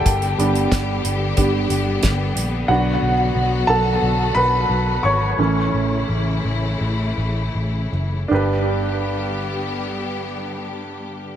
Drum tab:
HH |xxxxx-x-x-x-x-x-|----------------|----------------|----------------|
SD |----o-------o---|----------------|----------------|----------------|
BD |o---o---o---o---|----------------|----------------|----------------|